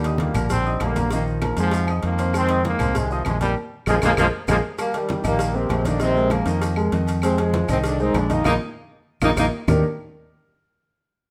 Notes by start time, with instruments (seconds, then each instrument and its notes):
Already playing: fingered electric bass D#2, trombone section A#2 D3 G3
0.03 grand piano G4 D#5 D#6, cowbell, high conga, low agogo, maracas
0.18 trombone section D3 G3 A#3, cowbell, high conga, maracas
0.34 fingered electric bass A#1, grand piano A#3 A#4 A#5, cowbell, high conga, low conga, low agogo, claves, maracas
0.50 trombone section G3 C4, cowbell, high conga, low conga, low agogo, maracas
0.65 grand piano D#4 D#5 D#6, high conga, maracas
0.80 fingered electric bass A#1, trombone section D3 G3 A#3, cowbell, high conga, low timbale, low agogo, claves, maracas
0.96 grand piano A#3 A#4 A#5, cowbell, high conga, low agogo, maracas
1.10 trombone section D#3 F3 A#3, grand piano D#3 D#4 D#5, cowbell, high conga, maracas
1.27 high conga
1.42 grand piano A#3 A#4 A#5, cowbell, high conga, low agogo, claves, maracas
1.57 fingered electric bass F2, trombone section G#2 F3, grand piano G#3 G#4 G#5, cowbell, maracas
1.71 cowbell, high conga, low agogo, maracas
1.87 grand piano D#4 D#5 D#6, high conga, low agogo, claves, maracas
2.03 fingered electric bass F2, trombone section D#3 F3 A#3, cowbell, high conga, maracas
2.18 grand piano C4 C5 C6, cowbell, high conga, low agogo, maracas
2.33 trombone section D#3 G#3 C4, cowbell, high conga, low agogo, claves, maracas
2.48 grand piano D#4 D#5 D#6, cowbell, high conga, low agogo, maracas
2.65 trombone section D#3 A#3, cowbell, high conga, maracas
2.79 fingered electric bass C2, grand piano C4 C5 C6, cowbell, high conga, low conga, low agogo, claves, maracas
2.94 trombone section C3 D#3 G#3, cowbell, high conga, low conga, low agogo, maracas
3.11 trombone section F3, grand piano D#4 D#5 D#6, maracas
3.25 fingered electric bass A#1, trombone section G#3, cowbell, high conga, low agogo, claves, maracas
3.41 trombone section D#3 G3, grand piano A#3 A#4 A#5, cowbell, high conga, low agogo, maracas
3.86 fingered electric bass A#1, trombone section F3 G#3 A#3, grand piano G#4 A#4 D#5, cowbell, high conga, high timbale, claves, maracas
4.02 fingered electric bass A#1, trombone section F3 G#3 A#3, grand piano G#4 A#4 D#5, cowbell, high conga, high timbale, claves, maracas
4.17 fingered electric bass A#1, trombone section F3 G#3 A#3, grand piano G#4 A#4 D#5, cowbell, high conga, high timbale, claves, maracas
4.48 fingered electric bass A#1, trombone section F3 G#3 A#3, grand piano G#4 A#4 D#5, cowbell, high conga, high timbale, claves, maracas
4.78 grand piano G3 G4 A#4, horn section G3 A#3, cowbell, high conga, low agogo, claves, maracas
4.94 horn section D#3 G3, grand piano G3 G4 A#4, cowbell, high conga, low agogo, maracas
5.09 cowbell, high conga, maracas
5.24 fingered electric bass A#1, grand piano D#3 D#4 D#5, horn section G3 A#3, cowbell, high conga, low conga, low agogo, claves, maracas
5.39 cowbell, low agogo, maracas
5.54 horn section C3 G#3 C4, grand piano A#3 G4 A#4, high conga, maracas
5.69 fingered electric bass A#1, cowbell, high conga, low timbale, low agogo, claves, maracas
5.85 horn section D3 A#3 D4, grand piano D#3 D#4 D#5, cowbell, high conga, low agogo, maracas
6.00 horn section C3 G#3 C4, grand piano D#3 D#4 D#5, cowbell, high conga, maracas
6.16 grand piano G#3 G#4 A#4, high conga, maracas
6.30 horn section F3 A#3, cowbell, high conga, low agogo, claves, maracas
6.46 fingered electric bass F2, grand piano D#3 D#4 D#5, cowbell, maracas
6.61 cowbell, high conga, low agogo, maracas
6.76 grand piano G#3 G#4 A#4, high conga, low agogo, claves, maracas
6.92 fingered electric bass F2, grand piano D#3 D#4 D#5, cowbell, maracas
7.07 cowbell, high conga, low agogo, maracas
7.22 horn section C3 G#3 C4, grand piano G#3 G#4 C5, cowbell, high conga, low agogo, claves, maracas
7.38 horn section F3 G#3, grand piano G#3 G#4 C5, cowbell, high conga, low agogo, maracas
7.54 cowbell, high conga, maracas
7.68 fingered electric bass C2, grand piano D#3 D#4 D#5, horn section G#3 C4, cowbell, high conga, low conga, low agogo, claves, maracas
7.84 horn section D3 G#3 D4, cowbell, high conga, low agogo, maracas
8.00 horn section D#3 C4 D#4, grand piano G#3 G#4 C5, high conga, maracas
8.14 fingered electric bass A#1, horn section D3 G#3 D4, cowbell, high conga, low agogo, claves, maracas
8.30 grand piano D#3 D#4 D#5, horn section D#3 A#3 D#4, cowbell, high conga, low agogo, maracas
8.44 fingered electric bass A#1, horn section D#3 G#3 A#3 D#4, grand piano A#3 D#4 F4, cowbell, high conga, high timbale, claves, maracas
9.21 fingered electric bass A#1, horn section D#3 G#3 A#3 D#4, grand piano A#3 D#4 F4, cowbell, high conga, high timbale, claves, maracas
9.36 fingered electric bass A#1, horn section D#3 G#3 A#3 D#4, grand piano A#3 D#4 F4, cowbell, high conga, high timbale, claves, maracas
9.68 fingered electric bass D#2, grand piano D#3 A#3 D4 D#4 G4 A#4, low bongo, low conga, low timbale, claves, maracas